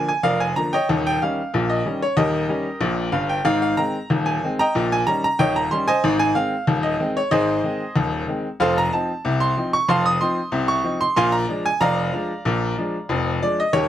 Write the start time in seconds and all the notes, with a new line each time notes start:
0.09 G#5
0.23 F1 F2 A#4 D5 F5
0.40 G#5
0.56 D3 F3 A#3 A#5
0.73 C#5 D#5 G5
0.89 D#1 D#2
1.07 G5
1.22 D#3 G3 C#4 F5
1.54 A#1 A#2
1.70 D#5
1.85 D#3 G3 C#4
2.02 C#5
2.17 D#1 D#2 G4 A#4 D#5
2.48 D#3 G3 C#4
2.81 A#1 A#2
3.12 G1 G2 F5
3.29 G5
3.45 G#1 G#2 F5
3.62 F5
3.77 D#3 G#3 C4 A#5
4.10 D#1 D#2
4.26 G#5
4.44 D#3 G#3 C4
4.59 D#5 G5 A#5
4.75 A#1 A#2
4.92 G#5
5.07 D#3 G3 C#4 A#5
5.24 A#5
5.39 D#1 D#2 C#5 D#5 G5
5.56 A#5
5.71 D#3 G3 C#4 C6
5.88 C5 D#5 G#5
6.04 G#1 G#2
6.19 G#5
6.35 D#3 G#3 C4 F5
6.67 D#1 D#2
6.83 D#5
6.99 D#3 G#3 C4
7.17 C#5
7.31 G#1 G#2 G#4 C5 D#5
7.63 D#3 G#3 C4
7.96 D#1 D#2
8.28 D#3 G#3 C4
8.60 F1 F2 A4 C5 F5
8.78 A#5
8.93 F3 C4 D#4 A5
9.25 C2 C3
9.40 C6
9.57 F3 C4 D#4
9.73 C#6
9.89 F1 F2 F5 A5 C6
10.06 D#6
10.21 F3 C4 D#4 C6
10.52 C2 C3
10.68 C#6
10.84 F3 C4 D#4
11.01 C6
11.16 A#1 A#2 F5 G#5 C6
11.32 A#5
11.49 F3 G#3 D4
11.66 G#5
11.81 F1 F2 D5 F5 A#5
12.13 F3 G#3 D4
12.45 A#1 A#2
12.78 F3 G#3 D4
13.09 F1 F2
13.42 F3 G#3 D4 D5
13.60 D#5
13.73 D#1 D#2 G4 A#4 C#5